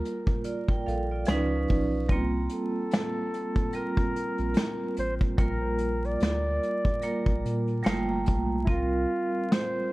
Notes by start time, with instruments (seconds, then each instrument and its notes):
Already playing: vibraphone G3 A#3 F4 A#4
0.05 closed hi-hat
0.27 kick
0.44 vibraphone F4 D5, closed hi-hat
0.68 vibraphone A#4 G5, kick
0.86 analog synth bass A#1, vibraphone A4 F5, closed hi-hat
1.11 vibraphone F4 D5
1.25 analog synth bass C#2, vibraphone F3 C#4 D#4, snare, closed hi-hat
1.30 vibraphone B4
1.68 analog synth bass B1, kick, open hi-hat
2.09 analog synth bass C2, vibraphone G3 A#3 C4 F4, kick, closed hi-hat
2.49 flugelhorn A4, closed hi-hat
2.91 snare, closed hi-hat
3.34 closed hi-hat
3.56 kick, closed hi-hat
3.73 vibraphone G3 C4 F4, flugelhorn A#4, closed hi-hat
3.77 vibraphone A#4
3.97 kick
4.16 closed hi-hat
4.38 analog synth bass A#1, closed hi-hat
4.54 snare, closed hi-hat
4.97 analog synth bass A1, flugelhorn C5, closed hi-hat
5.21 kick
5.38 analog synth bass A#1, vibraphone G3 A#3 F4 A#4, flugelhorn A#4, kick, closed hi-hat
5.78 closed hi-hat
6.04 flugelhorn D5, closed hi-hat
6.20 analog synth bass D2, snare, closed hi-hat
6.63 closed hi-hat
6.85 kick
7.01 vibraphone G3 A#3 F4 A#4, closed hi-hat
7.26 analog synth bass A#1, kick
7.45 analog synth bass A#2, closed hi-hat
7.67 closed hi-hat
7.83 analog synth bass G1, vibraphone G3 A3 A#3 F4 G5, snare, closed hi-hat
8.08 vibraphone A#5
8.26 analog synth bass B1, kick, closed hi-hat
8.64 vibraphone G3 C4, flugelhorn E4, kick
8.68 analog synth bass C2, vibraphone F4 A#4, flugelhorn F4
9.52 flugelhorn C5, snare